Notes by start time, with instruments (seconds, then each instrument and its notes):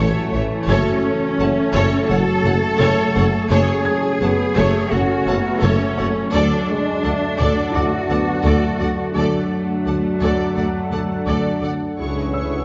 Already playing: tuba A1, ambient pad E3 C#4 A4 C#5, cello section A3, felt piano A4, viola section C#5
0.00 french horn section F#3, violin section A4 C#5
0.32 tuba A1, double bass section A1, french horn section E3, viola section C#5, violin section C#5 E5
0.67 tuba F#1, double bass section F#1, ambient pad F#3 C#4 C#5 A5, french horn section A3, cello section C#4, felt piano F#4 G#6, viola section A4 C#5, violin section A4 C#5
1.38 tuba F#1, double bass section F#1, french horn section A3, viola section A4 C#5, violin section F#5 A5
1.73 tuba F#1, double bass section F#1, viola section A4 C#5, violin section A4 C#5
2.09 tuba F#1, double bass section F#1, french horn section F#3, cello section A4, viola section A4 C#5, violin section C#5 F#5
2.45 double bass section F#1, tuba F#1, french horn section A3, viola section A4 C#5, violin section F#5 A5
2.80 tuba F#1, double bass section F#1, viola section A4 C#5, violin section A4 C#5
3.15 tuba F#1, double bass section F#1, viola section A4 C#5, violin section C#5 F#5
3.50 tuba F#1, double bass section F#1, ambient pad F#3 A3 C#4 C#5, viola section A3 C#5, french horn section C#4, cello section G#4, violin section A4 C#5
3.85 felt piano G#6
4.21 tuba F#1, double bass section F#1, viola section A3 C#5, french horn section B3, violin section F#5 A5
4.56 tuba F#1, double bass section F#1, viola section A3 C#5, french horn section A3, violin section A4 C#5
4.90 double bass section F#1, tuba F#1, french horn section C#4, cello section F#4, viola section A4 C#5, violin section C#5 F#5
5.27 tuba F#1, double bass section F#1, french horn section B3, viola section A4 C#5, violin section F#5 A5
5.62 double bass section F#1, tuba F#1, french horn section A3, cello section C#4, violin section A4 C#5, viola section A4 C#5
5.98 tuba F#1, double bass section F#1, viola section A4 C#5, violin section C#5 F#5, felt piano C#6
6.33 tuba D2, double bass section D2, french horn section F#3, ambient pad F#3 D4 F#5 A5, cello section D4, violin section A4 D5, viola section A4 D5
6.70 french horn section G#3
7.03 tuba D2, double bass section D2, french horn section A3, viola section A4 D5, violin section F#5 A5
7.39 double bass section D2, tuba D2, french horn section F#3, violin section A4 D5, viola section A4 D5
7.74 tuba D2, double bass section D2, french horn section A3, cello section F#4, viola section A4 D5, violin section D5 F#5, felt piano D5 D6
8.10 tuba D2, double bass section D2, french horn section B3, viola section A4 D5, violin section F#5 A5
8.45 tuba D2, double bass section D2, french horn section A3, violin section A4 D5, viola section A4 D5
8.80 tuba D2, double bass section D2, french horn section A3, viola section A4 D5, violin section D5 F#5
9.15 tuba D2, double bass section D2, french horn section F#3, ambient pad F#3 D4 A4 F#5, cello section A3, viola section A4 D5, violin section A4 D5
9.85 tuba D2, double bass section D2, viola section A4 D5, violin section F#5 A5
10.21 tuba D2, double bass section D2, viola section A4 D5, violin section A4 D5
10.56 tuba D2, double bass section D2, viola section A4 D5, violin section D5 F#5
10.91 tuba D2, double bass section D2, viola section A4 D5, violin section F#5 A5
11.26 tuba D2, double bass section D2, viola section A4 D5, violin section A4 D5
11.61 tuba D2, double bass section D2, viola section A4 D5, violin section D5 F#5
11.97 double bass section C#2, cello section C#2, trombone section E3 C#4, ambient pad G#3 C#4 C#5 E5, viola section E4 G#4, violin section C#5 C#6
12.32 viola section E4 G#4, violin section C#5 C#6, felt piano E6